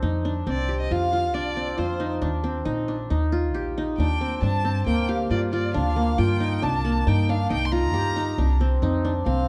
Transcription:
Already playing: qanun C4 F4 G4
0.02 upright bass F2, qanun D#4
0.25 qanun D4
0.47 upright bass C2, qanun C4, violin D5
0.69 qanun G4
0.81 violin D#5
0.91 upright bass F2, qanun F4, violin F5
1.13 qanun F4
1.34 upright bass C2, qanun D4, violin D5
1.57 qanun C4
1.78 upright bass F2, qanun F4, violin C5
2.00 qanun D#4
2.22 upright bass D#2, qanun D4
2.44 qanun C4
2.65 upright bass A#1, qanun D#4
2.88 qanun D4
3.10 upright bass D#2, qanun D#4
3.32 qanun F4
3.54 upright bass A#1, qanun G4
3.78 qanun D#4
3.98 upright bass D#2, qanun D4, violin G5
4.21 qanun C4
4.42 upright bass G2, qanun D4, violin A5
4.65 qanun C4
4.86 upright bass D2, qanun A#3, violin G5
5.09 qanun G4, violin F5
5.30 upright bass G2, qanun F4, violin D5
5.53 qanun F4, violin D5
5.74 upright bass D2, qanun D4, violin F5
5.96 qanun A#3
6.18 upright bass G2, qanun F4, violin G5
6.40 qanun D#4
6.62 upright bass C2, qanun D4, violin A5
6.85 qanun A#3
7.07 upright bass G2, qanun D#4, violin G5
7.29 qanun D4, violin F5
7.50 upright bass C2, qanun D#4, violin G5
7.65 violin C6
7.72 qanun F4, violin A#5
7.94 upright bass G2, qanun G4
8.16 qanun D#4
8.38 upright bass C2, qanun D4
8.61 qanun C4
8.82 upright bass F2, qanun D#4
9.05 qanun D4
9.25 upright bass C2, qanun C4, violin F5

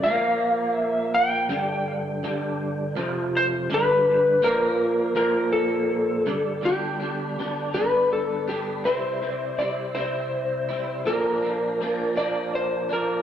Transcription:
0.03 clean electric guitar A#2 F3 A#3, electric slide guitar F5
0.75 electric slide guitar E5
1.14 electric slide guitar G5
1.49 clean electric guitar G2 D3 G3
2.23 clean electric guitar G2 D3 G3
2.95 clean electric guitar F2 C3 F3
3.37 electric slide guitar C5
3.70 clean electric guitar G2 D3 G3
3.74 electric slide guitar B4
4.42 clean electric guitar A#2 F3 A#3, electric slide guitar A#4
5.15 clean electric guitar A#2 F3 A#3, electric slide guitar A#4
5.53 electric slide guitar A4
6.26 clean electric guitar G2 D3 G3
6.61 clean electric guitar G2 D3 G3 B3 D4, electric slide guitar G4
7.00 clean electric guitar G3 B3 D4
7.38 clean electric guitar D3 G3 B3 D4
7.74 clean electric guitar G2 D3 G3 B3 D4, electric slide guitar B4
8.13 electric slide guitar A4
8.48 clean electric guitar G3 B3 D4, electric slide guitar G4
8.84 clean electric guitar C3 G3 C4 E4, electric slide guitar C5
9.21 clean electric guitar G3 C4 E4
9.58 clean electric guitar C3 G3 C4 E4, electric slide guitar D5
9.95 clean electric guitar C3 G3 C4 E4, electric slide guitar C5
10.69 clean electric guitar G3 C4 E4
11.06 clean electric guitar A#2 F3 A#3 D4, electric slide guitar A#4
11.42 clean electric guitar F3 A#3 D4
11.81 clean electric guitar A#2 F3 A#3 D4
12.16 clean electric guitar A#2 F3 A#3 D4, electric slide guitar D5
12.55 electric slide guitar C5
12.89 clean electric guitar F3 A#3 D4, electric slide guitar A#4

